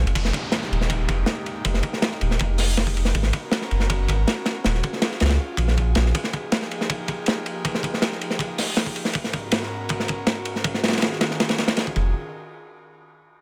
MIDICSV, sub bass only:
0, 0, Header, 1, 2, 480
1, 0, Start_track
1, 0, Tempo, 375000
1, 191, Time_signature, 4, 2, 24, 8
1, 17170, End_track
2, 0, Start_track
2, 0, Title_t, "Sub bass"
2, 0, Program_c, 0, 38
2, 71, Note_on_c, 0, 30, 84
2, 179, Note_off_c, 0, 30, 0
2, 196, Note_on_c, 0, 29, 93
2, 409, Note_off_c, 0, 29, 0
2, 912, Note_on_c, 0, 27, 86
2, 1372, Note_off_c, 0, 27, 0
2, 1391, Note_on_c, 0, 29, 90
2, 1607, Note_off_c, 0, 29, 0
2, 2111, Note_on_c, 0, 29, 93
2, 2327, Note_off_c, 0, 29, 0
2, 2832, Note_on_c, 0, 27, 91
2, 3047, Note_off_c, 0, 27, 0
2, 3080, Note_on_c, 0, 29, 96
2, 4016, Note_off_c, 0, 29, 0
2, 4031, Note_on_c, 0, 32, 95
2, 4247, Note_off_c, 0, 32, 0
2, 4750, Note_on_c, 0, 30, 85
2, 5211, Note_off_c, 0, 30, 0
2, 5227, Note_on_c, 0, 32, 95
2, 5445, Note_off_c, 0, 32, 0
2, 5953, Note_on_c, 0, 27, 94
2, 6168, Note_off_c, 0, 27, 0
2, 6672, Note_on_c, 0, 37, 85
2, 6887, Note_off_c, 0, 37, 0
2, 7135, Note_on_c, 0, 34, 103
2, 7603, Note_off_c, 0, 34, 0
2, 7630, Note_on_c, 0, 34, 78
2, 7847, Note_off_c, 0, 34, 0
2, 15308, Note_on_c, 0, 29, 94
2, 15532, Note_off_c, 0, 29, 0
2, 17170, End_track
0, 0, End_of_file